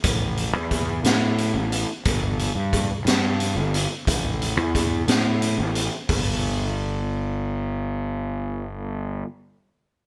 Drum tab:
HH |xxxxxx|xxxxxx|xxxxxx|o-----|
SD |---o--|---o--|---o--|------|
BD |o-o---|o-o---|o-o---|o-----|

HH |------|
SD |------|
BD |------|